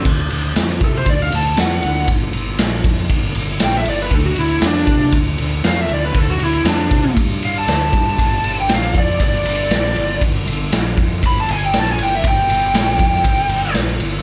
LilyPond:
<<
  \new Staff \with { instrumentName = "Lead electric guitar" } { \time 4/4 \key g \major \tempo 4 = 118 r4. a'16 c''16 d''16 f''16 a''8 fis''4 | r2. g''16 e''16 d''16 b'16 | a'16 fis'16 e'8 d'4 r4 f''16 e''16 d''16 b'16 | a'16 fis'16 e'8 d'4 r8 f''16 a''4~ a''16~ |
a''8. g''16 f''8 d''8 d''2 | r2 b''16 a''16 gis''16 g''16 a''16 gis''16 g''16 e''16 | g''2. r4 | }
  \new Staff \with { instrumentName = "Fingered electric bass" } { \clef bass \time 4/4 \key g \major d,8 d,8 f,8 c8 d,8 d,8 f,8 d,8 | g,,8 g,,8 ais,,8 f,8 g,,8 g,,8 ais,,8 g,,8 | d,8 d,8 f,8 c8 d,8 d,8 f,8 d,8 | d,8 d,8 f,8 c8 g,4 d,8 g,8 |
g,,8 g,,8 bes,,8 f,8 g,,8 g,,8 bes,,8 g,,8 | g,,8 g,,8 bes,,8 f,8 g,,8 g,,8 bes,,8 g,,8 | g,,8 g,,8 bes,,8 f,8 g,,8 g,,8 bes,,8 g,,8 | }
  \new DrumStaff \with { instrumentName = "Drums" } \drummode { \time 4/4 <cymc bd>8 cymr8 <cymr sn>8 <bd cymr>8 <bd cymr>8 cymr8 <cymr sn>8 cymr8 | <bd cymr>8 cymr8 <cymr sn>8 <bd cymr>8 <bd cymr>8 cymr8 <cymr sn>8 cymr8 | <bd cymr>8 cymr8 <cymr sn>8 <bd cymr>8 <bd cymr>8 cymr8 <cymr sn>8 cymr8 | <bd cymr>8 cymr8 <cymr sn>8 <bd cymr>8 <bd cymr>8 cymr8 <cymr sn>8 <bd cymr>8 |
<bd cymr>8 cymr8 <cymr sn>8 <bd cymr>8 <bd cymr>8 cymr8 <cymr sn>8 cymr8 | <bd cymr>8 cymr8 <cymr sn>8 <bd cymr>8 <bd cymr>8 cymr8 <cymr sn>8 cymr8 | <bd cymr>8 cymr8 <cymr sn>8 <bd cymr>8 <bd cymr>8 cymr8 <cymr sn>8 cymr8 | }
>>